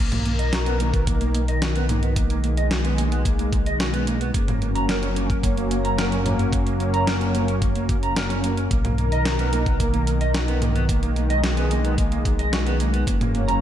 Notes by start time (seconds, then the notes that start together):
0.00 B1 D#3 A#3 A#4
0.12 A#3, closed hi-hat, mid tom
0.26 A#3, closed hi-hat
0.39 D#5, closed hi-hat
0.53 F#4, snare, closed hi-hat
0.66 B3, closed hi-hat
0.80 A#3, closed hi-hat
0.94 B3, kick, closed hi-hat
1.07 A#3, kick, closed hi-hat
1.21 A#3, closed hi-hat
1.35 A#3, closed hi-hat
1.48 D#5, closed hi-hat
1.62 F#4, snare, closed hi-hat
1.76 B3, closed hi-hat
1.89 A#3, closed hi-hat, mid tom
2.03 B3, closed hi-hat
2.16 G#3 A#3, kick, closed hi-hat
2.30 A#3, closed hi-hat
2.44 A#3, closed hi-hat
2.57 D#5, closed hi-hat
2.71 F#4, snare, closed hi-hat
2.84 B3, closed hi-hat
2.98 A#3, closed hi-hat
3.12 B3, closed hi-hat
3.25 A#3, kick, closed hi-hat
3.39 A#3, closed hi-hat
3.53 A#3, kick, closed hi-hat
3.66 D#5, closed hi-hat
3.80 F#4, snare, closed hi-hat
3.93 B3, closed hi-hat
4.07 A#3, closed hi-hat
4.20 B3, closed hi-hat
4.34 F#1 F#3 A#3 C#4, kick, closed hi-hat
4.48 A#3, closed hi-hat, mid tom
4.62 A#3, closed hi-hat
4.75 A#5, closed hi-hat
4.89 A#4, snare, closed hi-hat
5.03 C#4, closed hi-hat
5.16 A#3, closed hi-hat
5.30 C#4, kick, closed hi-hat
5.43 A#3, kick, closed hi-hat
5.57 A#3, closed hi-hat
5.71 A#3, closed hi-hat
5.84 A#5, closed hi-hat
5.98 A#4, snare, closed hi-hat
6.12 C#4, closed hi-hat
6.25 A#3, closed hi-hat, mid tom
6.39 C#4, closed hi-hat
6.52 A#3, kick, closed hi-hat
6.66 A#3, closed hi-hat
6.80 A#3, closed hi-hat
6.94 A#5, closed hi-hat
7.07 A#4, snare, closed hi-hat
7.21 C#4, closed hi-hat
7.35 A#3, closed hi-hat
7.48 C#4, closed hi-hat
7.62 A#3, kick, closed hi-hat
7.75 A#3, closed hi-hat
7.89 A#3, kick, closed hi-hat
8.03 A#5, closed hi-hat
8.16 A#4, snare, closed hi-hat
8.30 C#4, closed hi-hat
8.44 A#3, closed hi-hat
8.57 C#4, closed hi-hat
8.71 B1 D#3 A#3 A#4, kick, closed hi-hat
8.85 A#3, closed hi-hat, mid tom
8.98 A#3, closed hi-hat
9.12 D#5, closed hi-hat
9.25 F#4, snare, closed hi-hat
9.39 B3, closed hi-hat
9.53 A#3, closed hi-hat
9.66 B3, kick, closed hi-hat
9.80 A#3, kick, closed hi-hat
9.94 A#3, closed hi-hat
10.07 A#3, closed hi-hat
10.21 D#5, closed hi-hat
10.34 F#4, snare, closed hi-hat
10.48 B3, closed hi-hat
10.62 A#3, closed hi-hat, mid tom
10.75 B3, closed hi-hat
10.89 G#3 A#3, kick, closed hi-hat
11.03 A#3, closed hi-hat
11.16 A#3, closed hi-hat
11.30 D#5, closed hi-hat
11.44 F#4, snare, closed hi-hat
11.57 B3, closed hi-hat
11.71 A#3, closed hi-hat
11.85 B3, closed hi-hat
11.98 A#3, kick, closed hi-hat
12.12 A#3, closed hi-hat
12.25 A#3, kick, closed hi-hat
12.39 D#5, closed hi-hat
12.52 F#4, snare, closed hi-hat
12.66 B3, closed hi-hat
12.80 A#3, closed hi-hat
12.94 B3, closed hi-hat
13.07 F#1 F#3 A#3 C#4, kick, closed hi-hat
13.21 A#3, closed hi-hat, mid tom
13.34 A#3, closed hi-hat
13.48 A#5, closed hi-hat